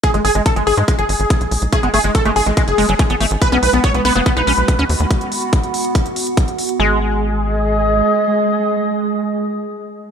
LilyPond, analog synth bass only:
\new Staff \with { instrumentName = "Analog synth bass" } { \clef bass \time 4/4 \key gis \minor \tempo 4 = 142 r16 gis,,16 gis,,16 gis,,16 r16 gis,,16 gis,,16 gis,16 r16 gis,,16 gis,,16 gis,,16 r16 b,,16 b,,16 b,,16 | r16 gis,,16 gis,,16 gis,,16 r16 gis,,16 gis,,16 a,,16 r16 fis,,16 fis,,16 fis,,16 r16 gis,,16 gis,,16 gis,,16 | r16 b,,16 b,,16 b,,16 r16 b,,16 b,,16 fis,,16 r16 b,,16 b,,16 b,,16 r16 dis,16 dis,16 dis,16 | r1 |
gis,,2. r4 | r1 | }